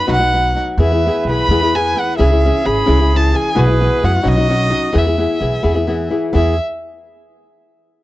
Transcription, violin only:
0, 0, Header, 1, 2, 480
1, 0, Start_track
1, 0, Key_signature, 4, "major"
1, 0, Tempo, 462606
1, 804, Time_signature, 6, 3, 24, 8
1, 8337, End_track
2, 0, Start_track
2, 0, Title_t, "Violin"
2, 0, Program_c, 0, 40
2, 126, Note_on_c, 0, 78, 116
2, 617, Note_off_c, 0, 78, 0
2, 840, Note_on_c, 0, 76, 93
2, 1282, Note_off_c, 0, 76, 0
2, 1348, Note_on_c, 0, 83, 113
2, 1820, Note_on_c, 0, 80, 108
2, 1835, Note_off_c, 0, 83, 0
2, 2069, Note_on_c, 0, 78, 94
2, 2084, Note_off_c, 0, 80, 0
2, 2255, Note_off_c, 0, 78, 0
2, 2261, Note_on_c, 0, 76, 89
2, 2758, Note_on_c, 0, 83, 102
2, 2774, Note_off_c, 0, 76, 0
2, 3283, Note_on_c, 0, 81, 89
2, 3299, Note_off_c, 0, 83, 0
2, 3480, Note_on_c, 0, 80, 94
2, 3495, Note_off_c, 0, 81, 0
2, 3720, Note_on_c, 0, 71, 107
2, 3736, Note_off_c, 0, 80, 0
2, 4202, Note_on_c, 0, 78, 99
2, 4218, Note_off_c, 0, 71, 0
2, 4441, Note_on_c, 0, 75, 112
2, 4457, Note_off_c, 0, 78, 0
2, 5166, Note_on_c, 0, 76, 82
2, 5182, Note_off_c, 0, 75, 0
2, 6364, Note_off_c, 0, 76, 0
2, 6588, Note_on_c, 0, 76, 83
2, 6824, Note_off_c, 0, 76, 0
2, 8337, End_track
0, 0, End_of_file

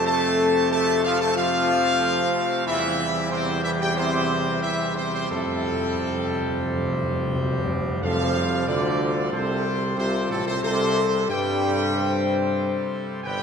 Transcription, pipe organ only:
0, 0, Header, 1, 2, 480
1, 0, Start_track
1, 0, Key_signature, -1, "major"
1, 0, Tempo, 648649
1, 53, Time_signature, 4, 2, 24, 8
1, 2934, Tempo, 677966
1, 5814, Tempo, 651466
1, 9789, End_track
2, 0, Start_track
2, 0, Title_t, "Pipe organ"
2, 0, Program_c, 0, 19
2, 0, Note_on_c, 0, 48, 88
2, 0, Note_on_c, 0, 57, 94
2, 0, Note_on_c, 0, 60, 90
2, 0, Note_on_c, 0, 67, 89
2, 1945, Note_off_c, 0, 67, 0
2, 1959, Note_off_c, 0, 60, 0
2, 1964, Note_off_c, 0, 48, 0
2, 1974, Note_off_c, 0, 57, 0
2, 1974, Note_on_c, 0, 60, 94
2, 1979, Note_on_c, 0, 48, 86
2, 1979, Note_on_c, 0, 55, 97
2, 1980, Note_on_c, 0, 67, 93
2, 5784, Note_off_c, 0, 60, 0
2, 5787, Note_off_c, 0, 48, 0
2, 5787, Note_off_c, 0, 67, 0
2, 5803, Note_off_c, 0, 55, 0
2, 5813, Note_on_c, 0, 69, 76
2, 5814, Note_on_c, 0, 60, 77
2, 5817, Note_on_c, 0, 55, 80
2, 5818, Note_on_c, 0, 48, 81
2, 9624, Note_off_c, 0, 60, 0
2, 9624, Note_off_c, 0, 69, 0
2, 9626, Note_off_c, 0, 48, 0
2, 9626, Note_off_c, 0, 55, 0
2, 9652, Note_on_c, 0, 55, 91
2, 9653, Note_on_c, 0, 67, 86
2, 9654, Note_on_c, 0, 59, 81
2, 9658, Note_on_c, 0, 50, 88
2, 9789, Note_off_c, 0, 50, 0
2, 9789, Note_off_c, 0, 55, 0
2, 9789, Note_off_c, 0, 59, 0
2, 9789, Note_off_c, 0, 67, 0
2, 9789, End_track
0, 0, End_of_file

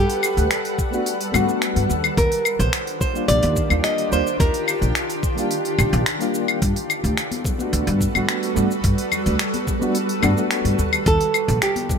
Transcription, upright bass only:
0, 0, Header, 1, 2, 480
1, 0, Start_track
1, 0, Key_signature, 1, "major"
1, 0, Tempo, 555556
1, 1877, Time_signature, 4, 2, 24, 8
1, 10354, End_track
2, 0, Start_track
2, 0, Title_t, "Upright bass"
2, 0, Program_c, 0, 32
2, 319, Note_on_c, 0, 38, 89
2, 391, Note_off_c, 0, 38, 0
2, 1156, Note_on_c, 0, 43, 98
2, 1231, Note_off_c, 0, 43, 0
2, 1522, Note_on_c, 0, 43, 77
2, 1592, Note_off_c, 0, 43, 0
2, 1638, Note_on_c, 0, 39, 82
2, 1786, Note_off_c, 0, 39, 0
2, 1878, Note_on_c, 0, 39, 102
2, 1952, Note_off_c, 0, 39, 0
2, 2240, Note_on_c, 0, 34, 93
2, 2311, Note_off_c, 0, 34, 0
2, 2837, Note_on_c, 0, 34, 106
2, 2912, Note_off_c, 0, 34, 0
2, 2962, Note_on_c, 0, 39, 103
2, 3104, Note_off_c, 0, 39, 0
2, 3200, Note_on_c, 0, 39, 83
2, 3271, Note_off_c, 0, 39, 0
2, 3557, Note_on_c, 0, 39, 79
2, 3632, Note_off_c, 0, 39, 0
2, 3800, Note_on_c, 0, 39, 101
2, 3873, Note_off_c, 0, 39, 0
2, 4160, Note_on_c, 0, 34, 85
2, 4231, Note_off_c, 0, 34, 0
2, 4998, Note_on_c, 0, 34, 99
2, 5072, Note_off_c, 0, 34, 0
2, 5122, Note_on_c, 0, 34, 102
2, 5192, Note_off_c, 0, 34, 0
2, 5720, Note_on_c, 0, 43, 100
2, 5793, Note_off_c, 0, 43, 0
2, 6080, Note_on_c, 0, 38, 89
2, 6151, Note_off_c, 0, 38, 0
2, 6676, Note_on_c, 0, 38, 102
2, 6751, Note_off_c, 0, 38, 0
2, 6800, Note_on_c, 0, 43, 100
2, 6944, Note_off_c, 0, 43, 0
2, 7042, Note_on_c, 0, 43, 79
2, 7112, Note_off_c, 0, 43, 0
2, 7397, Note_on_c, 0, 43, 80
2, 7472, Note_off_c, 0, 43, 0
2, 7638, Note_on_c, 0, 43, 99
2, 7712, Note_off_c, 0, 43, 0
2, 8001, Note_on_c, 0, 38, 88
2, 8072, Note_off_c, 0, 38, 0
2, 8838, Note_on_c, 0, 43, 100
2, 8912, Note_off_c, 0, 43, 0
2, 9199, Note_on_c, 0, 43, 80
2, 9270, Note_off_c, 0, 43, 0
2, 9317, Note_on_c, 0, 39, 75
2, 9465, Note_off_c, 0, 39, 0
2, 9557, Note_on_c, 0, 39, 106
2, 9632, Note_off_c, 0, 39, 0
2, 9921, Note_on_c, 0, 34, 99
2, 9992, Note_off_c, 0, 34, 0
2, 10354, End_track
0, 0, End_of_file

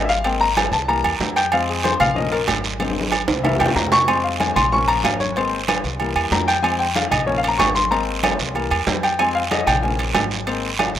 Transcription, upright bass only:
0, 0, Header, 1, 2, 480
1, 0, Start_track
1, 0, Key_signature, -4, "minor"
1, 0, Tempo, 319659
1, 375, Time_signature, 4, 2, 24, 8
1, 16509, End_track
2, 0, Start_track
2, 0, Title_t, "Upright bass"
2, 0, Program_c, 0, 32
2, 0, Note_on_c, 0, 32, 88
2, 1005, Note_off_c, 0, 32, 0
2, 1076, Note_on_c, 0, 36, 106
2, 1531, Note_off_c, 0, 36, 0
2, 1566, Note_on_c, 0, 40, 83
2, 1793, Note_off_c, 0, 40, 0
2, 1799, Note_on_c, 0, 41, 94
2, 2922, Note_off_c, 0, 41, 0
2, 3002, Note_on_c, 0, 34, 91
2, 3677, Note_off_c, 0, 34, 0
2, 3726, Note_on_c, 0, 32, 93
2, 4845, Note_off_c, 0, 32, 0
2, 4924, Note_on_c, 0, 36, 89
2, 5374, Note_off_c, 0, 36, 0
2, 5408, Note_on_c, 0, 40, 70
2, 5634, Note_off_c, 0, 40, 0
2, 5642, Note_on_c, 0, 41, 97
2, 6763, Note_off_c, 0, 41, 0
2, 6849, Note_on_c, 0, 34, 100
2, 7520, Note_off_c, 0, 34, 0
2, 7563, Note_on_c, 0, 32, 88
2, 8682, Note_off_c, 0, 32, 0
2, 8767, Note_on_c, 0, 36, 95
2, 9215, Note_off_c, 0, 36, 0
2, 9241, Note_on_c, 0, 40, 75
2, 9469, Note_off_c, 0, 40, 0
2, 9481, Note_on_c, 0, 41, 91
2, 10601, Note_off_c, 0, 41, 0
2, 10683, Note_on_c, 0, 34, 101
2, 11355, Note_off_c, 0, 34, 0
2, 11401, Note_on_c, 0, 32, 86
2, 12521, Note_off_c, 0, 32, 0
2, 12607, Note_on_c, 0, 36, 97
2, 13054, Note_off_c, 0, 36, 0
2, 13080, Note_on_c, 0, 40, 75
2, 13308, Note_off_c, 0, 40, 0
2, 13319, Note_on_c, 0, 41, 92
2, 14441, Note_off_c, 0, 41, 0
2, 14519, Note_on_c, 0, 34, 88
2, 15195, Note_off_c, 0, 34, 0
2, 15239, Note_on_c, 0, 32, 93
2, 16364, Note_off_c, 0, 32, 0
2, 16439, Note_on_c, 0, 36, 97
2, 16509, Note_off_c, 0, 36, 0
2, 16509, End_track
0, 0, End_of_file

